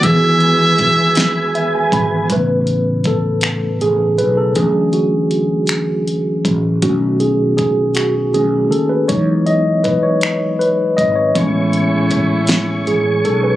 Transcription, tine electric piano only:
<<
  \new Staff \with { instrumentName = "Tine electric piano" } { \time 6/8 \key e \major \tempo 4. = 53 r2 e''16 gis''16 b''8 | b'4 a'4 gis'8 b'16 a'16 | gis'8 fis'4. r4 | fis'8 gis'8 gis'8 fis'8 gis'8 a'16 b'16 |
cis''8 dis''8 b'16 cis''8. b'8 dis''16 cis''16~ | cis''4~ cis''16 r8. gis'8 a'16 b'16 | }
  \new Staff \with { instrumentName = "Tine electric piano" } { \time 6/8 \key e \major <dis e b fis' gis'>2. | <cis a b>2. | <e fis cis'>2. | <dis a cis'>8 r4. <dis a cis'>8 r8 |
<fis gis dis'>8 r2 r8 | <gis b cis'>8 r2 r8 | }
>>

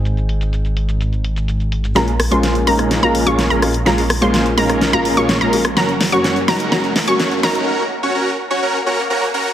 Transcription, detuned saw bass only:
\new Staff \with { instrumentName = "Detuned saw bass" } { \clef bass \time 4/4 \key bes \minor \tempo 4 = 126 aes,,1 | bes,,8. bes,,8. bes,,8. bes,,8 bes,,8 bes,,8. | bes,,8. bes,,8. bes,,8. bes,,8 bes,,8 bes,,8. | ges,,8. ges,,8. ges,,8 ges,,8. ges,,8. ges,,8 |
r1 | }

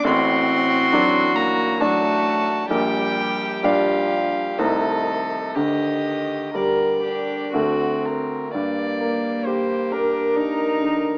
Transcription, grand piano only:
\new Staff \with { instrumentName = "Grand piano" } { \time 3/4 \key g \minor \tempo 4 = 65 <a,, a,>4 <fis d' d''>4 <fis d' d''>4 | <bes,, bes,>4 <g d' d''>4 <c, c a ees' c''>4 | <d, d>4 <g g' bes'>4 <d, d a fis' a'>4 | g,8 bes8 g'8 bes'8 d'8 d8 | }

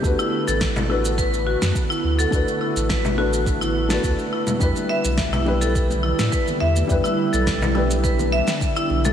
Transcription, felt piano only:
\new Staff \with { instrumentName = "Felt piano" } { \time 4/4 \key e \minor \tempo 4 = 105 <a d' fis' b'>4. <a d' fis' b'>16 r2 r16 | <a d' fis' b'>4. <a d' fis' b'>16 r4 <a d' fis' b'>4~ <a d' fis' b'>16 | <g d' e' b'>4. <g d' e' b'>16 r2 r16 | <g d' e' b'>4. <g d' e' b'>16 r2 r16 | }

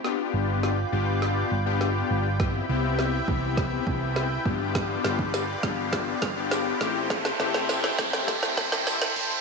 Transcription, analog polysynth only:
\new Staff \with { instrumentName = "Analog polysynth" } { \time 4/4 \key g \mixolydian \tempo 4 = 102 <b d' f' g'>4~ <b d' f' g'>16 r16 <b d' f' g'>4 r16 <b d' f' g'>4 r16 | <b c' e' g'>8 <b c' e' g'>8. r16 <b c' e' g'>4.~ <b c' e' g'>16 r16 <b d' f' g'>8~ | <b d' f' g'>4~ <b d' f' g'>16 r16 <b d' f' g'>4 r16 <b d' f' g'>8. <a c' e' g'>8~ | <a c' e' g'>16 r16 <a c' e' g'>8. r16 <a c' e' g'>4.~ <a c' e' g'>16 r8. | }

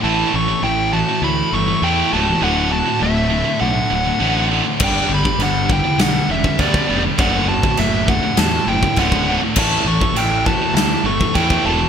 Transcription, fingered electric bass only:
\new Staff \with { instrumentName = "Fingered electric bass" } { \clef bass \time 4/4 \key d \major \tempo 4 = 101 a,,8 a,,8 a,,4 d,8 g,,8 e,8 cis,,8 | d,,4 d,,4 b,,8 d,,8 a,,4 | g,,8 g,,8 g,,4 b,,8 e,,8 d,8 eis,,8 | fis,,4 fis,,4 e,8 fis,,8 cis,,4 |
a,,8 a,,8 a,,4 d,8 g,,8 e,8 e,,8 | }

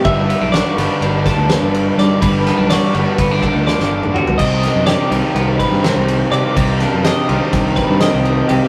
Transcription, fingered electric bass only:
\new Staff \with { instrumentName = "Fingered electric bass" } { \clef bass \time 9/8 \key g \major \tempo 4. = 83 g,,8. b,,8 r16 g,,16 r16 g,,8. d,8 g,,8. g,16 r16 | g,,8. b,,8 r16 g,,16 r16 g,,8. d,8 g,,8. g,16 r16 | c,8. fis,8 r16 c,16 r16 c,8. g,8 c,8. c16 r16 | c,8. fis,8 r16 c,16 r16 c,8. g,8 c,8. c,16 r16 | }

